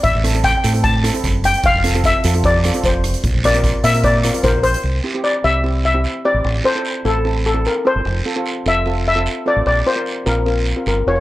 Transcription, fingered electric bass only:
X:1
M:4/4
L:1/16
Q:1/4=150
K:Cmix
V:1 name="Fingered electric bass" clef=bass
A,,, A,,,4- A,,, A,,6 ^F,,,4 | F,,, F,,,4- F,,, F,,6 F,,,4 | B,,, B,,,4- B,,, B,,6 B,,,4 | C,,2 z4 C,,8 z A,,, |
A,,,2 z4 A,,,8 z G,,, | F,,,2 z4 F,,,8 z A,,, | B,,,2 z4 B,,,6 G,,,2 F,,,2 |]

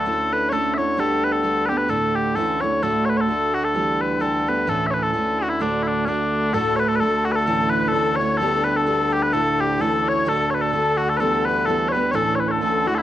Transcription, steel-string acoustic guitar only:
X:1
M:2/4
L:1/8
Q:"Swing" 1/4=129
K:D
V:1 name="Steel-string acoustic guitar"
[A,CEA]2 [A,CEA] [CEA] | [G,B,DG]2 [G,B,DG] [B,DG] | [A,,D,A,DE]2 [E,A,CE] [A,CE] | [D,,A,,D,A,DF]2 [D,A,DF]2 |
[E,G,B,G]2 [E,G,B,G] [G,B,G] | [A,,E,A,CE]2 [E,A,CE]2 | [D,,A,,D,A,DF]2 [D,A,DF]2 | [D,,A,,D,A,DF]2 [D,A,DF]2 |
[A,,E,A,CE]2 [E,A,CE] [A,CE] | [G,B,DG]2 [G,B,DG]2 | [A,,D,A,DE]2 [E,A,CE]2 | [D,,A,,D,A,DF]2 [D,A,DF]2 |
[E,G,B,G]2 [E,G,B,G] [G,B,G] | [A,,E,A,CE]2 [E,A,CE] [A,CE] |]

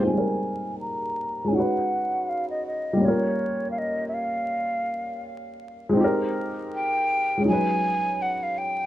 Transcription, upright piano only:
X:1
M:4/4
L:1/8
Q:"Swing 16ths" 1/4=81
K:Ab
V:1 name="Upright piano"
[G,A,CEAB]4 [^G,D^D^F=B]4 | [G,B,DFB]8 | [A,CEGB]4 [^F,^G,D^D=B]4 |]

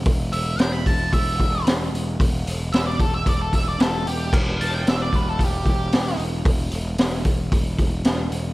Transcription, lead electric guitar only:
X:1
M:4/4
L:1/16
Q:1/4=112
K:Em
V:1 name="Lead electric guitar"
z2 e2 g b a2 e4 z4 | z4 e d A e d A e d A2 G2 | z2 a g e d B A G2 G4 z2 | z16 |]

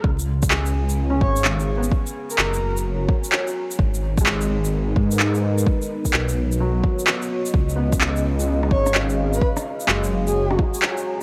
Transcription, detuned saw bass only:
X:1
M:4/4
L:1/8
Q:"Swing 16ths" 1/4=128
K:C#mix
V:1 name="Detuned saw bass" clef=bass
C,,3 C,,2 G,,,3 | z2 F,,, F,,,2 z3 | G,,,3 G,,,2 G,,3 | z2 B,,, B,,,2 z3 |
C,,3 C,,2 G,,,3 | z2 F,,, F,,,2 z3 |]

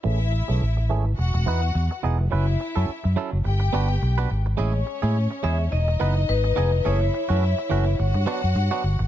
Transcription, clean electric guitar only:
X:1
M:4/4
L:1/16
Q:"Swing 16ths" 1/4=106
K:Alyd
V:1 name="Clean electric guitar"
[E,A,CG] z2 [E,A,CG] z2 [E,A,CG] z3 [E,B,DB] z3 [E,B,DG] z | [F,CEB] z2 [F,CEA] z2 [F,CEA] z3 [B,=DFB] z2 [B,DFB] z2 | [G,CEG] z2 [G,CEG] z2 [G,CEG] z3 [E,B,DB] z3 [E,B,DG] z | [E,A,CG] z2 [E,A,CF] z2 [E,A,CF] z3 [F,B,=DF] z2 [F,B,DF] z2 |]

